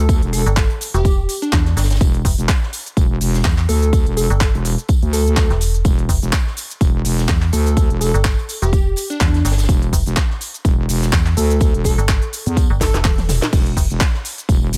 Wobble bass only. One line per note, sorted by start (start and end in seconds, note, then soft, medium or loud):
0.00 0.20 D2 medium
0.22 0.44 E1 loud
2.01 2.23 E1 loud
2.38 2.47 E1 loud
2.97 3.19 E1 loud
3.21 3.43 E1 loud
3.69 4.04 D2 medium
4.06 4.28 E1 loud
4.54 4.76 E1 loud
5.02 5.48 D2 loud
5.85 6.07 E1 medium
6.22 6.31 E1 loud
6.81 7.03 E1 medium
7.05 7.27 E1 loud
7.53 7.88 D2 medium
7.90 8.12 E1 loud
9.69 9.91 E1 loud
10.06 10.15 E1 loud
10.65 10.87 E1 medium
10.89 11.11 E1 loud
11.37 11.72 D2 loud
11.74 11.96 E1 loud
12.46 12.68 E2 medium
13.53 13.75 E1 loud
13.90 13.99 E1 loud
14.49 14.71 E1 medium
14.73 14.78 E1 loud